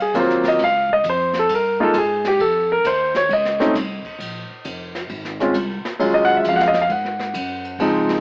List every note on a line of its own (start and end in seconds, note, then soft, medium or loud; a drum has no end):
0.00 0.13 C2 medium
0.00 0.15 G#4 medium
0.14 0.58 D#2 medium
0.14 0.60 F#3 medium
0.14 0.60 A#3 medium
0.14 0.60 C4 medium
0.14 0.60 F4 medium
0.14 hi-hat pedal medium
0.14 ride medium
0.19 0.46 C5 medium
0.30 snare soft
0.44 snare soft
0.44 ride medium
0.48 0.61 D#5 medium
0.59 1.03 C#2 medium
0.59 ride medium
0.64 0.91 F5 medium
0.89 1.06 D#5 medium
0.89 kick soft
1.04 1.48 F2 loud
1.04 hi-hat pedal medium
1.04 ride medium
1.10 1.37 C5 medium
1.33 snare soft
1.33 ride soft
1.39 1.52 A4 medium
1.49 1.93 G2 medium
1.49 ride medium
1.54 1.82 A#4 medium
1.80 1.93 G#3 medium
1.80 1.93 A#3 medium
1.80 1.93 D#4 medium
1.80 1.94 F4 medium
1.80 1.96 A4 medium
1.94 2.38 G#2 medium
1.94 hi-hat pedal medium
1.94 ride medium
1.98 2.26 G#4 medium
2.25 2.41 G4 medium
2.25 snare soft
2.25 ride medium
2.39 2.83 F2 medium
2.39 2.70 A4 medium
2.39 ride medium
2.72 2.85 A#4 medium
2.84 3.28 D#2 medium
2.84 3.15 C5 medium
2.84 hi-hat pedal medium
2.84 ride medium
3.15 3.30 C#5 medium
3.15 snare medium
3.15 ride soft
3.29 3.73 C#2 medium
3.29 4.63 D#5 medium
3.29 ride medium
3.45 snare soft
3.60 3.73 A3 medium
3.60 3.74 C4 medium
3.60 3.74 C#4 medium
3.60 3.74 D#4 medium
3.60 snare soft
3.73 4.02 C2 medium
3.73 snare soft
3.73 hi-hat pedal medium
3.73 ride medium
4.05 kick medium
4.05 ride soft
4.18 4.47 A#1 medium
4.18 ride medium
4.50 muted upright bass stroke soft
4.65 5.09 F1 medium
4.65 hi-hat pedal soft
4.65 ride medium
4.95 snare soft
4.95 ride soft
5.09 5.53 G#1 medium
5.09 ride medium
5.25 snare soft
5.40 5.54 G#3 medium
5.40 5.54 C4 medium
5.40 5.54 C#4 medium
5.40 5.55 F4 medium
5.40 snare soft
5.54 5.83 C2 loud
5.54 hi-hat pedal medium
5.54 ride medium
5.84 muted upright bass stroke soft
5.84 snare medium
6.00 6.44 D#2 medium
6.00 6.69 F#3 medium
6.00 6.69 G#3 medium
6.00 6.69 C#4 medium
6.00 6.70 F4 medium
6.00 ride medium
6.14 6.30 D#5 medium
6.25 6.35 F#5 loud
6.37 6.45 E5 medium
6.44 6.89 F2 medium
6.44 hi-hat pedal medium
6.44 ride medium
6.49 6.57 F5 medium
6.56 6.61 F#5 loud
6.56 snare soft
6.62 6.76 F5 medium
6.68 6.79 D#5 medium
6.74 snare soft
6.74 ride medium
6.81 6.89 F5 medium
6.89 7.33 G#2 medium
6.89 7.77 F#5 medium
6.89 ride medium
7.05 snare soft
7.19 snare soft
7.34 7.78 F#2 medium
7.34 hi-hat pedal medium
7.34 ride medium
7.64 ride soft
7.79 8.20 C#2 medium
7.79 8.20 F3 medium
7.79 8.20 G#3 medium
7.79 8.20 C4 medium
7.79 8.20 D#4 medium
7.79 ride medium
8.09 snare medium